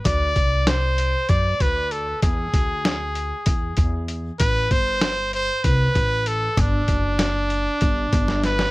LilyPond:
<<
  \new Staff \with { instrumentName = "Trumpet" } { \time 7/8 \key d \mixolydian \tempo 4 = 97 d''4 c''4 d''8 b'8 a'8 | gis'2. r8 | b'8 c''4 c''8 b'4 a'8 | d'2. b'8 | }
  \new Staff \with { instrumentName = "Upright bass" } { \clef bass \time 7/8 \key d \mixolydian d,8 c,4. fis,8 d,4 | e,8 d,4. e,8 e,4 | a,,8 g,,4. c,8 a,,4 | g,,8 fis,,4. g,,8 g,,4 | }
  \new DrumStaff \with { instrumentName = "Drums" } \drummode { \time 7/8 <hh bd>8 <hh bd>8 <hh sn>8 hh8 <hh bd>8 <hh bd>8 hh8 | <hh bd>8 <hh bd>8 <hh sn>8 hh8 <hh bd>8 <hh bd>8 hh8 | <hh bd>8 <hh bd>8 <hh sn>8 hh8 <hh bd>8 <hh bd>8 hh8 | <hh bd>8 <hh bd>8 <hh sn>8 hh8 <hh bd>8 <hh bd>16 sn16 <hh sn>16 sn16 | }
>>